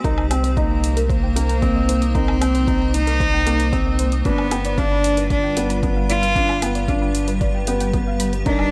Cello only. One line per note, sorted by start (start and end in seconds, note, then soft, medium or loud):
0.57 1.06 A#3 medium
1.10 2.17 A#3 loud
2.15 2.96 C4 loud
2.94 3.99 D#4 loud
4.26 4.80 B3 loud
4.78 5.30 D4 loud
5.31 5.79 D4 medium
6.10 6.84 F4 loud
8.46 8.71 D4 loud